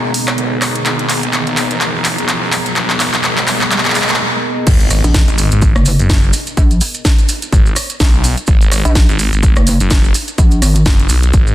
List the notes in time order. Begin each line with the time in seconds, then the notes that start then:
Already playing: G#1 B3 G#4 A#4 D#5 A#5, riser
0.14 open hi-hat
0.28 cross-stick, clap, closed hi-hat
0.38 B1, closed hi-hat
0.62 cross-stick, clap, open hi-hat
0.76 closed hi-hat
0.86 G#1, clap, closed hi-hat
0.99 closed hi-hat
1.10 G#1, clap, open hi-hat
1.23 A#1, closed hi-hat
1.33 clap, closed hi-hat
1.47 G#1, closed hi-hat
1.57 clap, open hi-hat
1.71 G#1, closed hi-hat
1.81 clap, closed hi-hat
1.95 F#1
2.05 clap, open hi-hat
2.18 F#1, closed hi-hat
2.29 clap, closed hi-hat
2.52 clap, open hi-hat
2.66 closed hi-hat
2.76 A#1, clap, closed hi-hat
2.90 clap, closed hi-hat
3.00 G#1, clap, open hi-hat
3.14 clap, closed hi-hat
3.24 G#1, clap, closed hi-hat
3.38 clap, closed hi-hat
3.48 clap, open hi-hat
3.61 clap, closed hi-hat
3.72 clap, closed hi-hat
3.78 clap
3.85 G#1, clap, closed hi-hat
3.90 clap
3.95 clap, open hi-hat
4.02 clap
4.09 G#1, clap, closed hi-hat
4.14 clap
4.67 G#1, kick, closed hi-hat, crash, impact, maracas
4.80 closed hi-hat, maracas
4.90 G#1, cross-stick, open hi-hat, maracas
5.04 A#1, closed hi-hat, maracas
5.14 kick, snare, closed hi-hat, maracas
5.28 G#1, closed hi-hat, maracas
5.38 open hi-hat, maracas
5.52 G#1, closed hi-hat, maracas
5.62 kick, closed hi-hat, maracas
5.76 F#1, cross-stick, maracas
5.86 open hi-hat, maracas
5.99 F#1, closed hi-hat, maracas
6.10 kick, snare, closed hi-hat, maracas
6.23 maracas
6.33 open hi-hat, maracas
6.47 closed hi-hat, maracas
6.57 A#1, kick, closed hi-hat, maracas
6.71 closed hi-hat, maracas
6.81 open hi-hat, maracas
6.94 closed hi-hat, maracas
7.05 kick, snare, closed hi-hat, maracas
7.19 closed hi-hat, maracas
7.29 open hi-hat, maracas
7.42 closed hi-hat, maracas
7.53 G#1, kick, closed hi-hat, maracas
7.66 maracas
7.76 cross-stick, open hi-hat, maracas
7.90 closed hi-hat, maracas
8.00 B1, kick, snare, closed hi-hat, maracas
8.14 maracas
8.24 open hi-hat, maracas
8.37 closed hi-hat, maracas
8.47 G#1, kick, closed hi-hat, maracas
8.61 closed hi-hat, maracas
8.71 G#1, cross-stick, open hi-hat, maracas
8.85 A#1, closed hi-hat, maracas
8.95 kick, snare, closed hi-hat, maracas
9.09 G#1, closed hi-hat, maracas
9.19 open hi-hat, maracas
9.33 G#1, closed hi-hat, maracas
9.43 kick, closed hi-hat, maracas
9.56 F#1, cross-stick, maracas
9.67 open hi-hat, maracas
9.80 F#1, closed hi-hat, maracas
9.90 kick, snare, closed hi-hat, maracas
10.04 maracas
10.14 open hi-hat, maracas
10.28 closed hi-hat, maracas
10.38 A#1, kick, closed hi-hat, maracas
10.51 closed hi-hat, maracas
10.62 G#1, cross-stick, open hi-hat, maracas
10.75 closed hi-hat, maracas
10.86 F#1, kick, snare, closed hi-hat, maracas
10.99 closed hi-hat, maracas
11.09 B1, open hi-hat, maracas
11.22 closed hi-hat, maracas
11.33 G#1, kick, closed hi-hat, maracas
11.47 maracas